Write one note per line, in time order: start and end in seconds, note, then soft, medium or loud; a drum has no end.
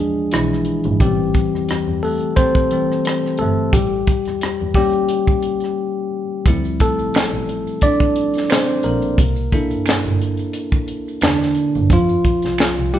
0.00 0.24 E2 loud
0.00 0.62 F3 medium
0.00 0.63 G#3 soft
0.00 0.63 D4 medium
0.00 0.36 G#4 medium
0.31 0.63 B1 medium
0.31 0.97 E3 medium
0.31 0.96 E4 medium
0.31 cross-stick loud
0.31 closed hi-hat medium
0.53 cross-stick soft
0.65 closed hi-hat medium
0.84 0.99 G#1 medium
0.84 closed hi-hat soft
1.00 1.47 A1 loud
1.00 1.47 E3 soft
1.00 1.99 G3 medium
1.00 1.48 C4 medium
1.00 2.06 G4 medium
1.00 kick loud
1.00 closed hi-hat medium
1.34 kick medium
1.34 closed hi-hat medium
1.54 1.65 E2 soft
1.54 cross-stick soft
1.69 1.83 E2 soft
1.69 cross-stick loud
1.69 closed hi-hat medium
1.87 2.17 E2 medium
2.03 2.35 A3 medium
2.03 2.38 A4 medium
2.03 open hi-hat soft
2.21 closed hi-hat soft
2.36 2.71 C4 medium
2.36 3.42 C5 loud
2.36 kick medium
2.36 closed hi-hat medium
2.55 kick medium
2.71 3.02 E3 soft
2.71 3.02 G3 soft
2.71 3.02 C4 soft
2.71 closed hi-hat medium
2.92 cross-stick soft
3.05 cross-stick loud
3.05 closed hi-hat medium
3.26 cross-stick soft
3.38 3.69 G1 medium
3.38 3.72 A3 medium
3.38 3.74 A4 medium
3.38 closed hi-hat medium
3.73 4.20 A1 loud
3.73 4.38 G3 medium
3.73 4.37 G4 medium
3.73 kick loud
3.73 closed hi-hat medium
4.07 kick medium
4.07 closed hi-hat medium
4.25 4.38 E2 soft
4.25 cross-stick soft
4.25 closed hi-hat soft
4.41 4.56 E2 soft
4.41 cross-stick loud
4.41 closed hi-hat medium
4.61 4.90 E2 medium
4.74 6.09 G3 medium
4.74 6.43 A#3 soft
4.74 6.43 C#4 medium
4.74 6.08 G4 medium
4.74 kick medium
4.74 open hi-hat soft
4.93 closed hi-hat soft
5.09 closed hi-hat medium
5.27 kick medium
5.42 closed hi-hat medium
5.60 cross-stick soft
5.60 closed hi-hat soft
6.46 6.92 D2 loud
6.46 7.45 F3 medium
6.46 7.45 G3 soft
6.46 7.45 C4 soft
6.46 7.45 E4 medium
6.46 kick medium
6.46 closed hi-hat medium
6.46 maracas medium
6.65 maracas soft
6.80 7.79 A3 medium
6.80 7.86 A4 medium
6.80 kick medium
6.80 closed hi-hat medium
6.80 maracas soft
6.99 7.11 A1 soft
6.99 maracas soft
7.14 7.28 A1 soft
7.14 finger snap medium
7.14 snare medium
7.14 clap medium
7.14 closed hi-hat medium
7.14 maracas medium
7.32 7.62 A1 medium
7.32 maracas soft
7.49 closed hi-hat medium
7.67 maracas soft
7.81 8.47 D4 medium
7.81 8.46 D5 loud
7.81 kick medium
7.81 closed hi-hat medium
7.81 maracas medium
8.00 kick medium
8.00 maracas soft
8.16 closed hi-hat medium
8.34 snare soft
8.34 closed hi-hat soft
8.34 maracas soft
8.50 8.83 C4 medium
8.50 8.85 C5 medium
8.50 finger snap medium
8.50 snare loud
8.50 clap medium
8.50 closed hi-hat medium
8.50 maracas medium
8.69 maracas soft
8.83 9.15 A#1 medium
8.83 9.52 A#3 medium
8.83 10.16 A#4 medium
8.83 closed hi-hat medium
8.83 maracas soft
9.02 closed hi-hat soft
9.02 maracas soft
9.18 9.65 C2 loud
9.18 kick loud
9.18 closed hi-hat medium
9.18 maracas medium
9.36 maracas soft
9.52 11.87 A#3 soft
9.52 11.24 D4 soft
9.52 11.88 E4 medium
9.52 11.87 A4 medium
9.52 kick medium
9.52 closed hi-hat medium
9.52 maracas soft
9.70 9.83 G1 soft
9.70 closed hi-hat soft
9.70 maracas soft
9.86 10.00 G1 soft
9.86 finger snap medium
9.86 snare medium
9.86 closed hi-hat medium
9.86 maracas soft
9.90 clap medium
10.05 10.35 G1 medium
10.05 maracas soft
10.22 closed hi-hat medium
10.37 closed hi-hat soft
10.37 maracas soft
10.53 closed hi-hat medium
10.53 maracas medium
10.72 kick medium
10.72 maracas soft
10.88 closed hi-hat medium
11.08 maracas soft
11.21 11.53 E2 medium
11.21 11.88 D3 medium
11.21 11.94 D4 medium
11.21 finger snap medium
11.21 snare loud
11.21 clap medium
11.21 closed hi-hat medium
11.21 maracas medium
11.41 snare soft
11.41 maracas soft
11.55 closed hi-hat medium
11.55 maracas soft
11.75 11.89 G1 medium
11.75 maracas soft
11.90 12.37 F2 loud
11.90 12.90 F3 medium
11.90 12.97 F4 medium
11.90 kick loud
11.90 closed hi-hat loud
11.90 maracas medium
12.09 maracas soft
12.24 kick medium
12.24 closed hi-hat medium
12.24 maracas soft
12.42 12.56 C2 soft
12.42 snare soft
12.42 closed hi-hat soft
12.42 maracas soft
12.58 12.73 C2 soft
12.58 finger snap medium
12.58 snare medium
12.58 clap medium
12.58 closed hi-hat medium
12.58 maracas medium
12.78 12.99 C2 medium
12.78 maracas soft
12.94 12.99 G3 medium
12.94 12.99 A3 soft
12.94 12.99 E4 medium
12.94 12.99 G4 medium
12.94 closed hi-hat medium